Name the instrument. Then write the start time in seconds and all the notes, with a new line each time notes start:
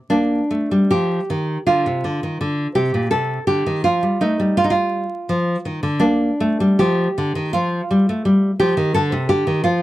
nylon-string guitar
0.10 A#3 D4
0.51 A3
0.71 G3
0.91 F3 G4
1.30 D#3
1.66 D3 F4
1.86 C3
2.04 D3
2.23 D#3
2.41 D3
2.75 C3 G4
2.94 A#2
3.11 C3 A4
3.47 D3 G4
3.66 D#3
3.84 F3 F4
4.03 G3
4.21 A3 D#4
4.40 G3
4.57 F4
4.64 D#4
4.70 F4
5.29 F3
5.65 D#3
5.83 D3
6.00 A#3 D4
6.41 A3
6.60 G3
6.79 F3 G4
7.18 D3
7.35 D#3
7.53 F3 F4
7.91 G3
8.09 A3
8.25 G3
8.59 F3 G4
8.77 D#3
8.94 D3 A4
9.12 C3
9.29 D3 G4
9.47 D#3
9.64 F3 F4